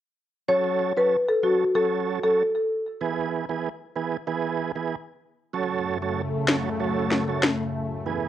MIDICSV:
0, 0, Header, 1, 5, 480
1, 0, Start_track
1, 0, Key_signature, 3, "minor"
1, 0, Tempo, 631579
1, 369, Time_signature, 4, 2, 24, 8
1, 6296, End_track
2, 0, Start_track
2, 0, Title_t, "Marimba"
2, 0, Program_c, 0, 12
2, 369, Note_on_c, 0, 73, 90
2, 547, Note_off_c, 0, 73, 0
2, 739, Note_on_c, 0, 71, 80
2, 822, Note_off_c, 0, 71, 0
2, 976, Note_on_c, 0, 69, 70
2, 1060, Note_off_c, 0, 69, 0
2, 1089, Note_on_c, 0, 66, 69
2, 1183, Note_off_c, 0, 66, 0
2, 1330, Note_on_c, 0, 69, 83
2, 1424, Note_off_c, 0, 69, 0
2, 1697, Note_on_c, 0, 69, 73
2, 1781, Note_off_c, 0, 69, 0
2, 6296, End_track
3, 0, Start_track
3, 0, Title_t, "Tonewheel organ"
3, 0, Program_c, 1, 16
3, 367, Note_on_c, 1, 54, 88
3, 369, Note_on_c, 1, 61, 82
3, 372, Note_on_c, 1, 69, 100
3, 705, Note_off_c, 1, 54, 0
3, 706, Note_off_c, 1, 61, 0
3, 707, Note_off_c, 1, 69, 0
3, 734, Note_on_c, 1, 54, 71
3, 737, Note_on_c, 1, 61, 67
3, 739, Note_on_c, 1, 69, 76
3, 884, Note_off_c, 1, 54, 0
3, 886, Note_off_c, 1, 61, 0
3, 887, Note_off_c, 1, 69, 0
3, 1086, Note_on_c, 1, 54, 70
3, 1088, Note_on_c, 1, 61, 63
3, 1091, Note_on_c, 1, 69, 76
3, 1247, Note_off_c, 1, 54, 0
3, 1248, Note_off_c, 1, 61, 0
3, 1250, Note_off_c, 1, 69, 0
3, 1327, Note_on_c, 1, 54, 86
3, 1330, Note_on_c, 1, 61, 76
3, 1332, Note_on_c, 1, 69, 91
3, 1665, Note_off_c, 1, 54, 0
3, 1666, Note_off_c, 1, 61, 0
3, 1667, Note_off_c, 1, 69, 0
3, 1695, Note_on_c, 1, 54, 76
3, 1697, Note_on_c, 1, 61, 69
3, 1700, Note_on_c, 1, 69, 80
3, 1845, Note_off_c, 1, 54, 0
3, 1846, Note_off_c, 1, 61, 0
3, 1847, Note_off_c, 1, 69, 0
3, 2287, Note_on_c, 1, 52, 93
3, 2289, Note_on_c, 1, 59, 82
3, 2291, Note_on_c, 1, 68, 100
3, 2625, Note_off_c, 1, 52, 0
3, 2626, Note_off_c, 1, 59, 0
3, 2627, Note_off_c, 1, 68, 0
3, 2654, Note_on_c, 1, 52, 70
3, 2656, Note_on_c, 1, 59, 67
3, 2658, Note_on_c, 1, 68, 82
3, 2804, Note_off_c, 1, 52, 0
3, 2805, Note_off_c, 1, 59, 0
3, 2806, Note_off_c, 1, 68, 0
3, 3007, Note_on_c, 1, 52, 72
3, 3008, Note_on_c, 1, 59, 68
3, 3012, Note_on_c, 1, 68, 81
3, 3167, Note_off_c, 1, 52, 0
3, 3168, Note_off_c, 1, 59, 0
3, 3170, Note_off_c, 1, 68, 0
3, 3246, Note_on_c, 1, 52, 87
3, 3248, Note_on_c, 1, 59, 83
3, 3251, Note_on_c, 1, 68, 97
3, 3584, Note_off_c, 1, 52, 0
3, 3585, Note_off_c, 1, 59, 0
3, 3587, Note_off_c, 1, 68, 0
3, 3613, Note_on_c, 1, 52, 73
3, 3616, Note_on_c, 1, 59, 67
3, 3618, Note_on_c, 1, 68, 80
3, 3764, Note_off_c, 1, 52, 0
3, 3765, Note_off_c, 1, 59, 0
3, 3766, Note_off_c, 1, 68, 0
3, 4204, Note_on_c, 1, 54, 90
3, 4207, Note_on_c, 1, 61, 85
3, 4210, Note_on_c, 1, 69, 103
3, 4543, Note_off_c, 1, 54, 0
3, 4545, Note_off_c, 1, 61, 0
3, 4546, Note_off_c, 1, 69, 0
3, 4574, Note_on_c, 1, 54, 72
3, 4576, Note_on_c, 1, 61, 67
3, 4579, Note_on_c, 1, 69, 81
3, 4724, Note_off_c, 1, 54, 0
3, 4725, Note_off_c, 1, 61, 0
3, 4727, Note_off_c, 1, 69, 0
3, 4926, Note_on_c, 1, 54, 70
3, 4928, Note_on_c, 1, 61, 64
3, 4930, Note_on_c, 1, 69, 79
3, 5087, Note_off_c, 1, 54, 0
3, 5088, Note_off_c, 1, 61, 0
3, 5089, Note_off_c, 1, 69, 0
3, 5166, Note_on_c, 1, 54, 85
3, 5168, Note_on_c, 1, 61, 78
3, 5170, Note_on_c, 1, 69, 99
3, 5504, Note_off_c, 1, 54, 0
3, 5505, Note_off_c, 1, 61, 0
3, 5506, Note_off_c, 1, 69, 0
3, 5533, Note_on_c, 1, 54, 73
3, 5535, Note_on_c, 1, 61, 66
3, 5537, Note_on_c, 1, 69, 81
3, 5684, Note_off_c, 1, 54, 0
3, 5685, Note_off_c, 1, 61, 0
3, 5686, Note_off_c, 1, 69, 0
3, 6127, Note_on_c, 1, 52, 94
3, 6129, Note_on_c, 1, 59, 83
3, 6131, Note_on_c, 1, 68, 102
3, 6296, Note_off_c, 1, 52, 0
3, 6296, Note_off_c, 1, 59, 0
3, 6296, Note_off_c, 1, 68, 0
3, 6296, End_track
4, 0, Start_track
4, 0, Title_t, "Analog synth pad"
4, 0, Program_c, 2, 89
4, 4211, Note_on_c, 2, 49, 72
4, 4211, Note_on_c, 2, 57, 91
4, 4212, Note_on_c, 2, 42, 81
4, 6111, Note_off_c, 2, 42, 0
4, 6111, Note_off_c, 2, 49, 0
4, 6111, Note_off_c, 2, 57, 0
4, 6128, Note_on_c, 2, 40, 81
4, 6128, Note_on_c, 2, 47, 71
4, 6128, Note_on_c, 2, 56, 89
4, 6296, Note_off_c, 2, 40, 0
4, 6296, Note_off_c, 2, 47, 0
4, 6296, Note_off_c, 2, 56, 0
4, 6296, End_track
5, 0, Start_track
5, 0, Title_t, "Drums"
5, 4927, Note_on_c, 9, 38, 114
5, 4928, Note_on_c, 9, 26, 91
5, 5003, Note_off_c, 9, 38, 0
5, 5004, Note_off_c, 9, 26, 0
5, 5408, Note_on_c, 9, 38, 63
5, 5484, Note_off_c, 9, 38, 0
5, 5649, Note_on_c, 9, 38, 108
5, 5650, Note_on_c, 9, 26, 85
5, 5725, Note_off_c, 9, 38, 0
5, 5726, Note_off_c, 9, 26, 0
5, 6296, End_track
0, 0, End_of_file